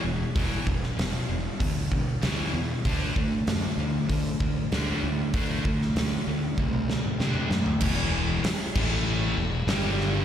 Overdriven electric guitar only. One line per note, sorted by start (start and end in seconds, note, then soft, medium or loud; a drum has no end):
0.04 0.32 E2 medium
0.04 0.32 B2 medium
0.35 0.64 E2 medium
0.35 0.65 B2 loud
0.35 0.65 E3 loud
0.65 0.94 E2 medium
0.65 0.94 B2 medium
0.97 1.25 E2 medium
0.97 1.26 B2 medium
1.29 1.57 E2 medium
1.29 1.57 B2 medium
1.60 1.88 E2 medium
1.60 1.88 B2 medium
1.91 2.19 E2 medium
1.91 2.19 B2 medium
2.22 2.51 E2 medium
2.22 2.51 B2 loud
2.22 2.52 E3 loud
2.54 2.81 E2 medium
2.54 2.82 B2 medium
2.86 3.14 D3 medium
2.86 3.14 A3 medium
2.86 3.14 D4 loud
3.17 3.44 D3 medium
3.17 3.44 A3 medium
3.48 3.75 D3 medium
3.48 3.75 A3 medium
3.80 4.07 D3 medium
3.80 4.07 A3 medium
4.11 4.38 D3 medium
4.11 4.38 A3 medium
4.42 4.69 D3 medium
4.42 4.69 A3 medium
4.72 5.01 D3 medium
4.72 5.01 A3 loud
4.72 5.01 D4 loud
5.04 5.31 D3 medium
5.04 5.31 A3 medium
5.34 5.63 D3 medium
5.34 5.63 A3 medium
5.34 5.63 D4 loud
5.66 5.93 D3 medium
5.66 5.93 A3 medium
5.97 6.24 D3 medium
5.97 6.24 A3 medium
6.28 6.55 D3 medium
6.28 6.55 A3 medium
6.59 6.86 D3 medium
6.59 6.86 A3 medium
6.89 7.17 D3 medium
6.89 7.17 A3 medium
7.21 7.49 D3 medium
7.21 7.50 A3 medium
7.21 7.50 D4 loud
7.50 7.78 D3 medium
7.50 7.79 A3 medium
7.81 8.42 E2 medium
7.81 8.43 B2 medium
7.81 8.43 E3 loud
8.44 muted overdriven electric guitar stroke medium
8.75 9.36 A2 medium
8.75 9.37 E3 loud
8.75 9.37 A3 loud
9.38 9.62 E2 medium
9.38 9.62 B2 medium
9.68 10.25 G2 loud
9.68 10.25 D3 loud
9.68 10.25 G3 loud